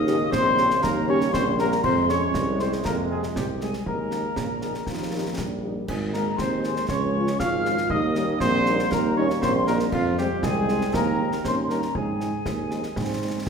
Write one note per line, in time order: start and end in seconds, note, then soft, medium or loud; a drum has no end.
0.00 0.24 D#2 medium
0.00 1.80 C#3 medium
0.00 0.79 G#3 medium
0.00 0.36 D#4 medium
0.00 0.31 D#5 loud
0.00 0.32 D#6 loud
0.07 0.16 A#3 medium
0.07 0.16 C#4 medium
0.07 0.16 G4 medium
0.07 snare medium
0.32 0.75 A#1 medium
0.32 0.83 C4 loud
0.32 0.84 C5 loud
0.32 0.83 C6 loud
0.32 concert bass drum medium
0.32 snare medium
0.58 0.67 A#3 medium
0.58 0.67 C#4 medium
0.58 0.67 G4 medium
0.58 snare medium
0.71 snare medium
0.83 1.25 D#2 medium
0.83 1.85 G3 medium
0.83 1.07 A#3 medium
0.83 1.08 A#4 medium
0.83 1.06 A#5 medium
0.83 concert bass drum medium
0.83 snare medium
1.08 1.17 A#3 medium
1.08 1.17 C#4 medium
1.08 1.32 C#4 loud
1.08 1.17 G4 medium
1.08 1.32 C#5 loud
1.08 1.34 C#6 loud
1.21 snare medium
1.33 1.76 A#1 medium
1.33 1.45 C4 medium
1.33 1.45 C5 loud
1.33 1.59 C6 medium
1.33 concert bass drum medium
1.33 snare medium
1.59 1.68 A#3 medium
1.59 1.86 A#3 medium
1.59 1.68 C#4 medium
1.59 1.68 G4 medium
1.59 1.71 A#4 loud
1.59 1.83 A#5 medium
1.59 snare medium
1.72 snare medium
1.83 2.26 F2 medium
1.83 3.70 C3 medium
1.83 3.70 G#3 medium
1.83 2.12 C4 medium
1.83 1.96 C5 loud
1.83 2.07 C6 medium
1.83 concert bass drum medium
1.83 crash soft
2.09 2.18 G#3 medium
2.09 2.18 C4 medium
2.09 2.60 C#4 medium
2.09 2.18 G#4 medium
2.09 2.57 C#5 medium
2.09 2.37 C#6 medium
2.09 snare medium
2.34 2.77 C2 medium
2.34 concert bass drum medium
2.34 snare medium
2.59 2.69 G#3 medium
2.59 2.69 C4 medium
2.59 2.72 C4 medium
2.59 2.69 G#4 medium
2.59 2.72 C5 medium
2.59 2.65 C6 medium
2.59 snare medium
2.73 snare soft
2.85 3.23 F2 medium
2.85 3.09 A#3 medium
2.85 2.97 A#4 medium
2.85 2.91 A#5 medium
2.85 concert bass drum medium
2.85 snare medium
3.10 3.20 G#3 medium
3.10 3.22 G#3 medium
3.10 3.20 C4 medium
3.10 3.20 G#4 medium
3.10 3.22 G#4 medium
3.10 3.16 G#5 medium
3.23 snare medium
3.35 3.78 C2 medium
3.35 3.48 G3 medium
3.35 3.48 G4 medium
3.35 3.41 G5 medium
3.35 concert bass drum medium
3.35 snare medium
3.60 3.70 G#3 soft
3.60 3.85 G#3 medium
3.60 3.70 C4 soft
3.60 3.70 G#4 soft
3.60 3.73 G#4 medium
3.60 3.84 G#5 medium
3.60 snare medium
3.73 snare soft
3.86 4.29 D#2 medium
3.86 4.29 D#3 medium
3.86 4.29 G#3 medium
3.86 5.34 A#3 medium
3.86 5.34 A#4 medium
3.86 5.34 A#5 medium
3.86 concert bass drum medium
4.11 4.21 A#3 soft
4.11 4.21 D#4 soft
4.11 4.20 G#4 soft
4.11 snare soft
4.36 4.79 A#1 medium
4.36 4.48 C#3 medium
4.36 concert bass drum medium
4.36 snare medium
4.62 4.73 D#3 soft
4.62 4.72 A#3 soft
4.62 4.71 D#4 soft
4.62 4.71 G#4 soft
4.62 snare soft
4.74 snare soft
4.87 5.30 D#2 medium
4.87 5.34 F3 medium
4.87 concert bass drum medium
4.87 snare medium
5.13 5.22 A#3 soft
5.13 5.22 D#4 soft
5.13 5.22 G4 soft
5.37 5.80 A#1 medium
5.37 5.88 G3 medium
5.37 concert bass drum medium
5.37 snare medium
5.63 5.72 A#3 soft
5.63 5.72 D#4 soft
5.63 5.72 G4 soft
5.88 6.31 G#1 medium
5.88 6.85 D#3 medium
5.88 7.86 G#3 medium
5.88 6.15 G#3 medium
5.88 6.00 G#4 medium
5.88 5.94 G#5 medium
5.88 concert bass drum medium
5.88 crash soft
6.13 6.22 G#3 medium
6.13 6.38 A#3 medium
6.13 6.22 D#4 medium
6.13 6.22 G#4 medium
6.13 6.25 A#4 medium
6.13 6.37 A#5 medium
6.13 snare medium
6.38 6.81 D#2 medium
6.38 6.86 C4 medium
6.38 6.87 C5 medium
6.38 6.89 C6 medium
6.38 concert bass drum medium
6.38 snare medium
6.64 6.73 G#3 medium
6.64 6.73 D#4 medium
6.64 6.73 G#4 soft
6.64 snare soft
6.76 snare soft
6.89 7.32 C#2 medium
6.89 7.91 F3 medium
6.89 7.36 C#4 medium
6.89 7.36 C#5 medium
6.89 7.36 C#6 medium
6.89 concert bass drum medium
6.89 snare medium
7.15 7.24 G#3 medium
7.15 7.24 C#4 medium
7.15 7.24 F4 medium
7.27 snare medium
7.39 7.82 G#1 medium
7.39 7.88 F4 medium
7.39 7.87 F5 loud
7.39 7.90 F6 medium
7.39 concert bass drum medium
7.39 snare medium
7.65 7.74 G#3 medium
7.65 7.74 C#4 medium
7.65 7.74 F4 medium
7.65 snare medium
7.78 snare medium
7.89 8.33 D#2 medium
7.89 9.88 G3 medium
7.89 9.88 A#3 medium
7.89 8.38 D#4 medium
7.89 8.38 D#5 loud
7.89 8.41 D#6 medium
7.89 concert bass drum medium
8.15 8.25 G3 medium
8.15 8.25 C#4 medium
8.15 8.25 D#4 medium
8.15 snare medium
8.40 8.83 A#1 medium
8.40 8.89 C4 medium
8.40 8.93 C5 loud
8.40 8.88 C6 loud
8.40 concert bass drum medium
8.40 snare medium
8.66 8.76 G3 medium
8.66 8.76 C#4 medium
8.66 8.76 D#4 medium
8.66 snare medium
8.79 snare soft
8.92 9.34 D#2 medium
8.92 9.04 A#3 medium
8.92 9.16 A#4 loud
8.92 9.16 A#5 medium
8.92 concert bass drum medium
8.92 snare medium
9.17 9.26 G3 medium
9.17 9.26 C#4 medium
9.17 9.30 C#4 loud
9.17 9.26 D#4 medium
9.17 9.28 C#5 loud
9.17 9.43 C#6 loud
9.30 snare medium
9.42 9.85 A#1 medium
9.42 9.66 C4 medium
9.42 9.53 C5 loud
9.42 9.66 C6 medium
9.42 concert bass drum medium
9.42 snare medium
9.67 9.77 G3 medium
9.67 9.80 A#3 medium
9.67 9.77 C#4 medium
9.67 9.77 D#4 medium
9.67 9.79 A#4 loud
9.67 9.75 A#5 medium
9.67 snare medium
9.79 snare medium
9.92 10.35 F2 medium
9.92 10.17 F3 medium
9.92 11.41 G#3 medium
9.92 11.45 C4 medium
9.92 10.16 F4 loud
9.92 10.01 F5 medium
9.92 concert bass drum medium
9.92 crash soft
10.18 10.29 G3 medium
10.18 10.27 G#3 medium
10.18 10.28 C4 medium
10.18 10.45 G4 medium
10.18 10.25 G5 medium
10.18 snare medium
10.43 10.82 C2 medium
10.43 10.91 G#3 medium
10.43 10.96 G#4 loud
10.43 10.91 G#5 medium
10.43 concert bass drum medium
10.43 snare medium
10.69 10.78 G#3 medium
10.69 10.78 C4 medium
10.69 snare soft
10.81 snare soft
10.93 11.37 D#2 medium
10.93 11.41 A#3 medium
10.93 11.44 A#4 medium
10.93 11.41 A#5 medium
10.93 concert bass drum medium
10.93 snare medium
11.20 11.29 G#3 medium
11.20 11.29 C4 medium
11.20 11.29 D#4 medium
11.32 snare medium
11.44 11.87 D#2 medium
11.44 11.96 G3 medium
11.44 11.56 C4 medium
11.44 11.92 C#4 medium
11.44 11.56 C5 medium
11.44 11.69 C6 medium
11.44 concert bass drum medium
11.44 snare medium
11.69 11.79 G3 soft
11.69 11.81 A#3 medium
11.69 11.79 C#4 soft
11.69 11.79 D#4 medium
11.69 11.80 A#4 medium
11.69 11.94 A#5 medium
11.69 snare soft
11.82 snare soft
11.94 12.38 G#2 medium
11.94 13.42 G#3 medium
11.94 12.34 G#3 soft
11.94 12.33 C4 medium
11.94 13.42 G#4 medium
11.94 13.47 G#5 medium
11.94 concert bass drum medium
12.21 12.30 G#3 soft
12.21 12.30 C4 soft
12.21 12.30 D#4 soft
12.21 snare soft
12.46 12.88 D#2 medium
12.46 12.58 G#3 medium
12.46 concert bass drum medium
12.46 snare medium
12.71 12.80 G#3 soft
12.71 12.83 A#3 medium
12.71 12.81 C4 soft
12.71 12.80 D#4 soft
12.71 snare soft
12.83 snare soft
12.96 13.39 G#2 medium
12.96 13.44 C4 medium
12.96 concert bass drum medium
12.96 snare medium
13.21 13.31 G#3 soft
13.21 13.31 C4 soft
13.21 13.31 D#4 soft